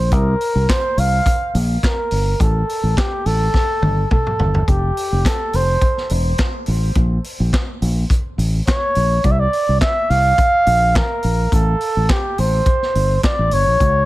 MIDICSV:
0, 0, Header, 1, 4, 480
1, 0, Start_track
1, 0, Tempo, 570342
1, 100, Time_signature, 4, 2, 24, 8
1, 11828, End_track
2, 0, Start_track
2, 0, Title_t, "Flugelhorn"
2, 0, Program_c, 0, 56
2, 0, Note_on_c, 0, 72, 75
2, 110, Note_on_c, 0, 70, 89
2, 123, Note_off_c, 0, 72, 0
2, 589, Note_on_c, 0, 72, 89
2, 602, Note_off_c, 0, 70, 0
2, 836, Note_on_c, 0, 77, 97
2, 849, Note_off_c, 0, 72, 0
2, 1308, Note_off_c, 0, 77, 0
2, 1555, Note_on_c, 0, 70, 84
2, 2028, Note_on_c, 0, 69, 82
2, 2040, Note_off_c, 0, 70, 0
2, 2504, Note_on_c, 0, 67, 85
2, 2516, Note_off_c, 0, 69, 0
2, 2747, Note_on_c, 0, 69, 102
2, 2760, Note_off_c, 0, 67, 0
2, 3457, Note_off_c, 0, 69, 0
2, 3462, Note_on_c, 0, 69, 83
2, 3948, Note_on_c, 0, 67, 80
2, 3961, Note_off_c, 0, 69, 0
2, 4433, Note_on_c, 0, 69, 91
2, 4446, Note_off_c, 0, 67, 0
2, 4677, Note_on_c, 0, 72, 95
2, 4690, Note_off_c, 0, 69, 0
2, 5147, Note_off_c, 0, 72, 0
2, 7301, Note_on_c, 0, 73, 90
2, 7782, Note_on_c, 0, 74, 91
2, 7794, Note_off_c, 0, 73, 0
2, 7837, Note_on_c, 0, 76, 81
2, 7850, Note_off_c, 0, 74, 0
2, 7909, Note_on_c, 0, 74, 92
2, 7922, Note_off_c, 0, 76, 0
2, 8252, Note_off_c, 0, 74, 0
2, 8257, Note_on_c, 0, 76, 101
2, 8502, Note_on_c, 0, 77, 124
2, 8514, Note_off_c, 0, 76, 0
2, 9229, Note_on_c, 0, 70, 93
2, 9242, Note_off_c, 0, 77, 0
2, 9710, Note_on_c, 0, 69, 97
2, 9723, Note_off_c, 0, 70, 0
2, 10186, Note_on_c, 0, 67, 91
2, 10198, Note_off_c, 0, 69, 0
2, 10430, Note_on_c, 0, 72, 84
2, 10442, Note_off_c, 0, 67, 0
2, 11136, Note_off_c, 0, 72, 0
2, 11141, Note_on_c, 0, 74, 94
2, 11389, Note_on_c, 0, 73, 115
2, 11402, Note_off_c, 0, 74, 0
2, 11828, Note_off_c, 0, 73, 0
2, 11828, End_track
3, 0, Start_track
3, 0, Title_t, "Fingered electric bass"
3, 0, Program_c, 1, 33
3, 0, Note_on_c, 1, 34, 84
3, 102, Note_off_c, 1, 34, 0
3, 102, Note_on_c, 1, 36, 97
3, 284, Note_off_c, 1, 36, 0
3, 466, Note_on_c, 1, 36, 87
3, 552, Note_off_c, 1, 36, 0
3, 820, Note_on_c, 1, 36, 91
3, 1002, Note_off_c, 1, 36, 0
3, 1302, Note_on_c, 1, 34, 103
3, 1484, Note_off_c, 1, 34, 0
3, 1781, Note_on_c, 1, 31, 71
3, 1963, Note_off_c, 1, 31, 0
3, 2022, Note_on_c, 1, 33, 103
3, 2204, Note_off_c, 1, 33, 0
3, 2384, Note_on_c, 1, 33, 79
3, 2471, Note_off_c, 1, 33, 0
3, 2742, Note_on_c, 1, 33, 84
3, 2923, Note_off_c, 1, 33, 0
3, 3217, Note_on_c, 1, 31, 102
3, 3400, Note_off_c, 1, 31, 0
3, 3703, Note_on_c, 1, 31, 75
3, 3884, Note_off_c, 1, 31, 0
3, 3938, Note_on_c, 1, 29, 90
3, 4121, Note_off_c, 1, 29, 0
3, 4312, Note_on_c, 1, 29, 79
3, 4395, Note_off_c, 1, 29, 0
3, 4660, Note_on_c, 1, 29, 78
3, 4841, Note_off_c, 1, 29, 0
3, 5141, Note_on_c, 1, 28, 93
3, 5321, Note_off_c, 1, 28, 0
3, 5621, Note_on_c, 1, 33, 78
3, 5801, Note_off_c, 1, 33, 0
3, 5856, Note_on_c, 1, 34, 101
3, 6038, Note_off_c, 1, 34, 0
3, 6228, Note_on_c, 1, 34, 88
3, 6312, Note_off_c, 1, 34, 0
3, 6581, Note_on_c, 1, 34, 97
3, 6761, Note_off_c, 1, 34, 0
3, 7053, Note_on_c, 1, 33, 97
3, 7236, Note_off_c, 1, 33, 0
3, 7543, Note_on_c, 1, 34, 86
3, 7722, Note_off_c, 1, 34, 0
3, 7779, Note_on_c, 1, 36, 113
3, 7959, Note_off_c, 1, 36, 0
3, 8153, Note_on_c, 1, 36, 82
3, 8234, Note_off_c, 1, 36, 0
3, 8501, Note_on_c, 1, 36, 99
3, 8680, Note_off_c, 1, 36, 0
3, 8979, Note_on_c, 1, 34, 95
3, 9256, Note_off_c, 1, 34, 0
3, 9462, Note_on_c, 1, 34, 88
3, 9641, Note_off_c, 1, 34, 0
3, 9697, Note_on_c, 1, 33, 103
3, 9878, Note_off_c, 1, 33, 0
3, 10071, Note_on_c, 1, 33, 76
3, 10153, Note_off_c, 1, 33, 0
3, 10423, Note_on_c, 1, 33, 85
3, 10602, Note_off_c, 1, 33, 0
3, 10901, Note_on_c, 1, 31, 94
3, 11082, Note_off_c, 1, 31, 0
3, 11268, Note_on_c, 1, 33, 84
3, 11352, Note_off_c, 1, 33, 0
3, 11381, Note_on_c, 1, 31, 89
3, 11476, Note_off_c, 1, 31, 0
3, 11504, Note_on_c, 1, 34, 68
3, 11590, Note_off_c, 1, 34, 0
3, 11617, Note_on_c, 1, 37, 98
3, 11828, Note_off_c, 1, 37, 0
3, 11828, End_track
4, 0, Start_track
4, 0, Title_t, "Drums"
4, 98, Note_on_c, 9, 42, 57
4, 99, Note_on_c, 9, 36, 111
4, 182, Note_off_c, 9, 42, 0
4, 183, Note_off_c, 9, 36, 0
4, 342, Note_on_c, 9, 46, 58
4, 426, Note_off_c, 9, 46, 0
4, 580, Note_on_c, 9, 36, 100
4, 583, Note_on_c, 9, 38, 107
4, 584, Note_on_c, 9, 42, 63
4, 590, Note_on_c, 9, 39, 91
4, 664, Note_off_c, 9, 36, 0
4, 667, Note_off_c, 9, 38, 0
4, 668, Note_off_c, 9, 42, 0
4, 674, Note_off_c, 9, 39, 0
4, 822, Note_on_c, 9, 46, 68
4, 907, Note_off_c, 9, 46, 0
4, 1059, Note_on_c, 9, 36, 107
4, 1061, Note_on_c, 9, 42, 75
4, 1143, Note_off_c, 9, 36, 0
4, 1145, Note_off_c, 9, 42, 0
4, 1302, Note_on_c, 9, 46, 59
4, 1386, Note_off_c, 9, 46, 0
4, 1542, Note_on_c, 9, 36, 108
4, 1544, Note_on_c, 9, 42, 59
4, 1549, Note_on_c, 9, 38, 102
4, 1556, Note_on_c, 9, 39, 80
4, 1626, Note_off_c, 9, 36, 0
4, 1628, Note_off_c, 9, 42, 0
4, 1633, Note_off_c, 9, 38, 0
4, 1640, Note_off_c, 9, 39, 0
4, 1774, Note_on_c, 9, 46, 70
4, 1858, Note_off_c, 9, 46, 0
4, 2020, Note_on_c, 9, 36, 106
4, 2023, Note_on_c, 9, 42, 53
4, 2104, Note_off_c, 9, 36, 0
4, 2108, Note_off_c, 9, 42, 0
4, 2267, Note_on_c, 9, 46, 58
4, 2351, Note_off_c, 9, 46, 0
4, 2501, Note_on_c, 9, 36, 99
4, 2506, Note_on_c, 9, 38, 111
4, 2508, Note_on_c, 9, 42, 57
4, 2513, Note_on_c, 9, 39, 89
4, 2585, Note_off_c, 9, 36, 0
4, 2590, Note_off_c, 9, 38, 0
4, 2592, Note_off_c, 9, 42, 0
4, 2598, Note_off_c, 9, 39, 0
4, 2742, Note_on_c, 9, 46, 74
4, 2826, Note_off_c, 9, 46, 0
4, 2979, Note_on_c, 9, 36, 100
4, 2983, Note_on_c, 9, 38, 53
4, 3063, Note_off_c, 9, 36, 0
4, 3067, Note_off_c, 9, 38, 0
4, 3219, Note_on_c, 9, 48, 67
4, 3303, Note_off_c, 9, 48, 0
4, 3458, Note_on_c, 9, 47, 80
4, 3460, Note_on_c, 9, 36, 102
4, 3542, Note_off_c, 9, 47, 0
4, 3544, Note_off_c, 9, 36, 0
4, 3590, Note_on_c, 9, 45, 71
4, 3675, Note_off_c, 9, 45, 0
4, 3697, Note_on_c, 9, 43, 89
4, 3782, Note_off_c, 9, 43, 0
4, 3824, Note_on_c, 9, 43, 79
4, 3908, Note_off_c, 9, 43, 0
4, 3937, Note_on_c, 9, 36, 100
4, 3938, Note_on_c, 9, 42, 51
4, 4022, Note_off_c, 9, 36, 0
4, 4022, Note_off_c, 9, 42, 0
4, 4182, Note_on_c, 9, 46, 63
4, 4267, Note_off_c, 9, 46, 0
4, 4418, Note_on_c, 9, 36, 106
4, 4424, Note_on_c, 9, 38, 113
4, 4425, Note_on_c, 9, 42, 67
4, 4431, Note_on_c, 9, 39, 86
4, 4502, Note_off_c, 9, 36, 0
4, 4508, Note_off_c, 9, 38, 0
4, 4509, Note_off_c, 9, 42, 0
4, 4515, Note_off_c, 9, 39, 0
4, 4656, Note_on_c, 9, 46, 67
4, 4740, Note_off_c, 9, 46, 0
4, 4894, Note_on_c, 9, 36, 97
4, 4894, Note_on_c, 9, 42, 67
4, 4978, Note_off_c, 9, 36, 0
4, 4978, Note_off_c, 9, 42, 0
4, 5026, Note_on_c, 9, 38, 35
4, 5111, Note_off_c, 9, 38, 0
4, 5129, Note_on_c, 9, 46, 60
4, 5213, Note_off_c, 9, 46, 0
4, 5370, Note_on_c, 9, 42, 61
4, 5375, Note_on_c, 9, 36, 109
4, 5375, Note_on_c, 9, 38, 109
4, 5382, Note_on_c, 9, 39, 86
4, 5454, Note_off_c, 9, 42, 0
4, 5459, Note_off_c, 9, 38, 0
4, 5460, Note_off_c, 9, 36, 0
4, 5466, Note_off_c, 9, 39, 0
4, 5604, Note_on_c, 9, 46, 73
4, 5689, Note_off_c, 9, 46, 0
4, 5850, Note_on_c, 9, 42, 56
4, 5854, Note_on_c, 9, 36, 104
4, 5934, Note_off_c, 9, 42, 0
4, 5938, Note_off_c, 9, 36, 0
4, 6096, Note_on_c, 9, 46, 59
4, 6180, Note_off_c, 9, 46, 0
4, 6337, Note_on_c, 9, 36, 102
4, 6342, Note_on_c, 9, 38, 109
4, 6344, Note_on_c, 9, 42, 61
4, 6349, Note_on_c, 9, 39, 91
4, 6421, Note_off_c, 9, 36, 0
4, 6426, Note_off_c, 9, 38, 0
4, 6428, Note_off_c, 9, 42, 0
4, 6434, Note_off_c, 9, 39, 0
4, 6580, Note_on_c, 9, 46, 66
4, 6664, Note_off_c, 9, 46, 0
4, 6817, Note_on_c, 9, 36, 108
4, 6820, Note_on_c, 9, 42, 72
4, 6901, Note_off_c, 9, 36, 0
4, 6904, Note_off_c, 9, 42, 0
4, 7061, Note_on_c, 9, 46, 60
4, 7145, Note_off_c, 9, 46, 0
4, 7300, Note_on_c, 9, 36, 106
4, 7300, Note_on_c, 9, 42, 59
4, 7306, Note_on_c, 9, 38, 110
4, 7313, Note_on_c, 9, 39, 85
4, 7385, Note_off_c, 9, 36, 0
4, 7385, Note_off_c, 9, 42, 0
4, 7390, Note_off_c, 9, 38, 0
4, 7397, Note_off_c, 9, 39, 0
4, 7533, Note_on_c, 9, 46, 65
4, 7617, Note_off_c, 9, 46, 0
4, 7777, Note_on_c, 9, 42, 57
4, 7778, Note_on_c, 9, 36, 96
4, 7861, Note_off_c, 9, 42, 0
4, 7862, Note_off_c, 9, 36, 0
4, 8021, Note_on_c, 9, 46, 57
4, 8105, Note_off_c, 9, 46, 0
4, 8257, Note_on_c, 9, 36, 108
4, 8258, Note_on_c, 9, 38, 113
4, 8259, Note_on_c, 9, 42, 63
4, 8265, Note_on_c, 9, 39, 88
4, 8341, Note_off_c, 9, 36, 0
4, 8342, Note_off_c, 9, 38, 0
4, 8343, Note_off_c, 9, 42, 0
4, 8349, Note_off_c, 9, 39, 0
4, 8503, Note_on_c, 9, 46, 71
4, 8587, Note_off_c, 9, 46, 0
4, 8737, Note_on_c, 9, 36, 114
4, 8739, Note_on_c, 9, 42, 74
4, 8822, Note_off_c, 9, 36, 0
4, 8823, Note_off_c, 9, 42, 0
4, 8975, Note_on_c, 9, 46, 66
4, 9059, Note_off_c, 9, 46, 0
4, 9216, Note_on_c, 9, 42, 62
4, 9218, Note_on_c, 9, 36, 108
4, 9221, Note_on_c, 9, 38, 102
4, 9228, Note_on_c, 9, 39, 88
4, 9300, Note_off_c, 9, 42, 0
4, 9303, Note_off_c, 9, 36, 0
4, 9305, Note_off_c, 9, 38, 0
4, 9312, Note_off_c, 9, 39, 0
4, 9447, Note_on_c, 9, 46, 62
4, 9532, Note_off_c, 9, 46, 0
4, 9696, Note_on_c, 9, 36, 105
4, 9698, Note_on_c, 9, 42, 53
4, 9780, Note_off_c, 9, 36, 0
4, 9782, Note_off_c, 9, 42, 0
4, 9936, Note_on_c, 9, 46, 58
4, 10020, Note_off_c, 9, 46, 0
4, 10175, Note_on_c, 9, 36, 111
4, 10176, Note_on_c, 9, 38, 111
4, 10177, Note_on_c, 9, 42, 62
4, 10183, Note_on_c, 9, 39, 86
4, 10259, Note_off_c, 9, 36, 0
4, 10260, Note_off_c, 9, 38, 0
4, 10261, Note_off_c, 9, 42, 0
4, 10267, Note_off_c, 9, 39, 0
4, 10419, Note_on_c, 9, 46, 67
4, 10504, Note_off_c, 9, 46, 0
4, 10655, Note_on_c, 9, 36, 110
4, 10656, Note_on_c, 9, 42, 70
4, 10739, Note_off_c, 9, 36, 0
4, 10740, Note_off_c, 9, 42, 0
4, 10792, Note_on_c, 9, 38, 36
4, 10876, Note_off_c, 9, 38, 0
4, 10900, Note_on_c, 9, 46, 57
4, 10985, Note_off_c, 9, 46, 0
4, 11136, Note_on_c, 9, 42, 64
4, 11138, Note_on_c, 9, 36, 110
4, 11141, Note_on_c, 9, 38, 110
4, 11148, Note_on_c, 9, 39, 82
4, 11220, Note_off_c, 9, 42, 0
4, 11222, Note_off_c, 9, 36, 0
4, 11225, Note_off_c, 9, 38, 0
4, 11232, Note_off_c, 9, 39, 0
4, 11371, Note_on_c, 9, 46, 65
4, 11455, Note_off_c, 9, 46, 0
4, 11616, Note_on_c, 9, 36, 101
4, 11618, Note_on_c, 9, 42, 56
4, 11701, Note_off_c, 9, 36, 0
4, 11703, Note_off_c, 9, 42, 0
4, 11828, End_track
0, 0, End_of_file